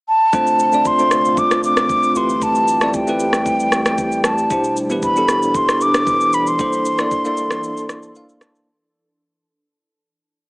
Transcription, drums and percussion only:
0.33 kick, shaker
0.47 shaker
0.59 shaker
0.72 shaker
0.85 kick, shaker
0.99 shaker
1.11 cross-stick, shaker
1.25 shaker
1.37 kick, shaker
1.51 cross-stick, shaker
1.64 shaker
1.77 cross-stick, shaker
1.89 kick, shaker
2.03 shaker
2.16 shaker
2.29 shaker
2.42 kick, shaker
2.55 shaker
2.68 shaker
2.81 cross-stick, shaker
2.94 kick, shaker
3.07 shaker
3.20 shaker
3.33 cross-stick, shaker
3.46 kick, shaker
3.60 shaker
3.72 cross-stick, shaker
3.86 cross-stick, shaker
3.98 kick, shaker
4.12 shaker
4.24 cross-stick, shaker
4.38 shaker
4.50 kick, shaker
4.64 shaker
4.77 shaker
4.90 shaker
5.03 kick, shaker
5.16 shaker
5.29 cross-stick, shaker
5.43 shaker
5.55 kick, shaker
5.69 cross-stick, shaker
5.81 shaker
5.94 cross-stick, shaker
6.07 kick, shaker
6.21 shaker
6.33 shaker
6.47 shaker
6.59 kick, shaker
6.73 shaker
6.85 shaker
6.98 cross-stick, shaker
7.11 kick, shaker
7.25 shaker
7.37 shaker
7.51 cross-stick, shaker
7.63 shaker
7.77 shaker
7.89 cross-stick, shaker
8.03 shaker
8.15 shaker
8.29 shaker
8.41 cross-stick, shaker
8.55 shaker

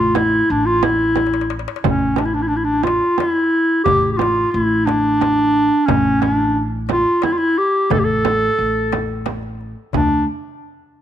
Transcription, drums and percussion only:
0.15 darbuka tek, frame drum
0.49 darbuka ka
0.83 darbuka tek, frame drum
1.01 darbuka ka
1.16 darbuka tek, frame drum
1.27 darbuka ka
1.34 darbuka tek
1.41 darbuka ka
1.50 darbuka tek
1.59 darbuka ka
1.68 darbuka tek
1.76 darbuka ka
1.84 frame drum, darbuka dum
2.16 darbuka tek, frame drum
2.54 darbuka ka
2.83 darbuka tek, frame drum
3.04 darbuka ka
3.18 darbuka tek, frame drum
3.86 frame drum, darbuka dum
4.19 darbuka tek, frame drum
4.55 darbuka ka
4.87 darbuka tek, frame drum
5.05 darbuka ka
5.21 darbuka tek, frame drum
5.88 frame drum, darbuka dum
6.22 darbuka tek, frame drum
6.55 darbuka ka
6.89 darbuka tek, frame drum
7.07 darbuka ka
7.22 darbuka tek, frame drum
7.91 darbuka dum, frame drum
8.25 darbuka tek, frame drum
8.58 darbuka ka
8.92 darbuka tek, frame drum
9.08 darbuka ka
9.26 darbuka tek, frame drum
9.43 darbuka ka
9.61 darbuka ka
9.93 darbuka dum, frame drum

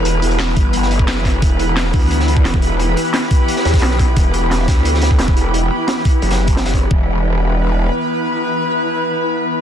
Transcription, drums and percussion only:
0.05 closed hi-hat
0.22 closed hi-hat
0.31 closed hi-hat
0.39 snare, closed hi-hat
0.48 snare
0.57 kick, closed hi-hat
0.73 closed hi-hat
0.82 snare
0.91 closed hi-hat
0.99 kick, closed hi-hat
1.07 snare, closed hi-hat
1.17 snare, closed hi-hat
1.25 kick, snare, closed hi-hat
1.34 closed hi-hat
1.42 kick, closed hi-hat
1.59 closed hi-hat
1.68 closed hi-hat
1.76 snare, closed hi-hat
1.85 snare
1.93 kick, closed hi-hat, open hi-hat
2.11 closed hi-hat
2.20 snare
2.28 closed hi-hat
2.37 kick, closed hi-hat
2.45 snare, closed hi-hat
2.54 kick, closed hi-hat
2.62 closed hi-hat
2.71 closed hi-hat
2.79 closed hi-hat
2.97 closed hi-hat
3.04 closed hi-hat
3.13 snare, closed hi-hat
3.22 snare
3.31 kick, closed hi-hat
3.48 closed hi-hat
3.56 snare
3.65 snare, closed hi-hat
3.74 kick, snare, closed hi-hat
3.78 snare, closed hi-hat
3.82 snare, closed hi-hat
3.91 snare
3.99 kick, snare, closed hi-hat
4.08 closed hi-hat
4.16 kick, closed hi-hat
4.34 closed hi-hat
4.51 snare, closed hi-hat
4.59 snare
4.68 kick, snare, closed hi-hat
4.85 closed hi-hat
4.94 snare
5.01 snare, closed hi-hat
5.11 kick
5.19 snare, closed hi-hat
5.28 kick, closed hi-hat
5.37 closed hi-hat
5.54 closed hi-hat
5.71 closed hi-hat
5.79 closed hi-hat
5.88 snare, closed hi-hat
5.96 snare
6.05 kick, closed hi-hat
6.22 closed hi-hat
6.31 snare, closed hi-hat
6.47 kick, closed hi-hat
6.57 snare, closed hi-hat
6.65 snare, closed hi-hat
6.74 kick, snare, closed hi-hat
6.91 kick

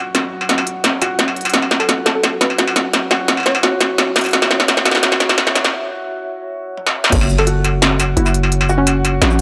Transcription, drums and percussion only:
0.15 snare, closed hi-hat, struck metal
0.41 struck metal
0.49 snare, closed hi-hat
0.58 struck metal
0.67 closed hi-hat
0.84 snare, closed hi-hat, struck metal
1.02 closed hi-hat, struck metal
1.19 snare, closed hi-hat
1.28 struck metal
1.36 closed hi-hat
1.41 closed hi-hat
1.45 closed hi-hat, struck metal
1.50 closed hi-hat
1.54 snare, closed hi-hat
1.62 struck metal
1.71 snare
1.80 struck metal
1.89 snare, closed hi-hat
2.06 snare, closed hi-hat, struck metal
2.23 snare, closed hi-hat, struck metal
2.41 snare, closed hi-hat
2.50 struck metal
2.58 snare, closed hi-hat
2.67 struck metal
2.76 snare, closed hi-hat
2.93 snare, closed hi-hat, struck metal
3.11 snare, struck metal
3.28 snare, closed hi-hat
3.37 struck metal
3.40 struck metal
3.43 snare, closed hi-hat, struck metal
3.49 struck metal
3.52 struck metal
3.55 struck metal
3.63 snare, closed hi-hat
3.81 snare, closed hi-hat, struck metal
3.98 snare, closed hi-hat, struck metal
4.16 snare, closed hi-hat
4.18 closed hi-hat
4.21 closed hi-hat
4.24 closed hi-hat, struck metal
4.26 closed hi-hat
4.29 closed hi-hat
4.31 snare, closed hi-hat
4.33 closed hi-hat
4.42 snare, struck metal
4.51 snare
4.60 snare
4.68 snare, closed hi-hat, struck metal
4.77 snare
4.85 snare, closed hi-hat, struck metal
4.91 snare
4.95 snare
4.97 snare
5.03 snare, closed hi-hat
5.12 snare, struck metal
5.20 snare, closed hi-hat
5.29 snare, struck metal
5.38 snare, closed hi-hat
5.47 snare
5.55 snare, closed hi-hat, struck metal
5.64 snare
6.77 high tom
6.87 snare
7.04 snare
7.12 kick, closed hi-hat, crash
7.21 struck metal
7.30 shaker
7.38 struck metal
7.47 closed hi-hat
7.64 closed hi-hat, struck metal
7.82 snare, closed hi-hat, struck metal
8.00 closed hi-hat, struck metal, shaker
8.17 closed hi-hat
8.26 struck metal, shaker
8.34 closed hi-hat
8.43 struck metal
8.52 closed hi-hat
8.61 struck metal
8.69 shaker
8.87 closed hi-hat, struck metal
9.05 closed hi-hat, struck metal
9.22 snare, closed hi-hat, struck metal
9.31 shaker

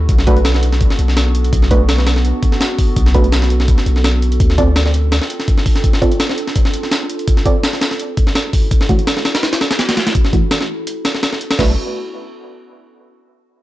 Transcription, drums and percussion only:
0.09 kick, closed hi-hat
0.19 snare
0.27 kick, closed hi-hat
0.37 closed hi-hat
0.45 snare, closed hi-hat
0.54 snare
0.63 closed hi-hat
0.72 snare
0.81 kick, closed hi-hat
0.90 snare
0.99 closed hi-hat
1.08 snare
1.17 snare, closed hi-hat
1.35 closed hi-hat
1.44 closed hi-hat
1.53 kick, closed hi-hat
1.62 snare
1.71 kick, closed hi-hat
1.89 snare, closed hi-hat
1.98 snare
2.07 snare, closed hi-hat
2.16 snare
2.25 closed hi-hat
2.43 kick, closed hi-hat
2.52 snare
2.61 snare, closed hi-hat
2.79 kick, open hi-hat
2.96 kick, closed hi-hat
3.06 snare
3.14 kick, closed hi-hat
3.24 closed hi-hat
3.32 snare, closed hi-hat
3.42 snare
3.50 closed hi-hat
3.60 snare
3.68 kick, closed hi-hat
3.78 snare
3.86 closed hi-hat
3.96 snare
4.04 snare, closed hi-hat
4.22 closed hi-hat
4.32 closed hi-hat
4.40 kick, closed hi-hat
4.50 snare
4.58 kick, closed hi-hat
4.76 snare, closed hi-hat
4.86 snare
4.94 closed hi-hat
5.12 snare, closed hi-hat
5.22 snare
5.30 closed hi-hat
5.40 snare
5.48 kick, closed hi-hat
5.58 snare
5.66 kick, open hi-hat
5.76 snare
5.84 kick, closed hi-hat
5.93 snare
6.02 kick, closed hi-hat
6.12 closed hi-hat
6.20 snare, closed hi-hat
6.29 snare
6.38 closed hi-hat
6.47 snare
6.56 kick, closed hi-hat
6.65 snare
6.74 closed hi-hat
6.83 snare
6.91 snare, closed hi-hat
7.10 closed hi-hat
7.19 closed hi-hat
7.28 kick, closed hi-hat
7.37 snare
7.46 kick, closed hi-hat
7.63 snare, closed hi-hat
7.73 snare
7.81 snare, closed hi-hat
7.91 snare
8.00 closed hi-hat
8.17 kick, closed hi-hat
8.27 snare
8.35 snare, closed hi-hat
8.53 kick, open hi-hat
8.71 kick, closed hi-hat
8.81 snare
8.89 kick, closed hi-hat
8.99 closed hi-hat
9.07 snare, closed hi-hat
9.17 snare
9.25 snare, closed hi-hat
9.35 snare, closed hi-hat
9.43 snare, closed hi-hat
9.53 snare, closed hi-hat
9.61 snare, closed hi-hat
9.71 snare, closed hi-hat
9.79 snare, closed hi-hat
9.89 snare, closed hi-hat
9.97 snare, closed hi-hat
10.07 snare, closed hi-hat
10.15 kick, closed hi-hat
10.25 snare
10.33 kick, closed hi-hat
10.51 snare, closed hi-hat
10.61 snare
10.87 closed hi-hat
11.05 snare, closed hi-hat
11.15 snare
11.23 snare, closed hi-hat
11.33 snare
11.41 closed hi-hat
11.51 snare, closed hi-hat
11.59 kick, snare, crash

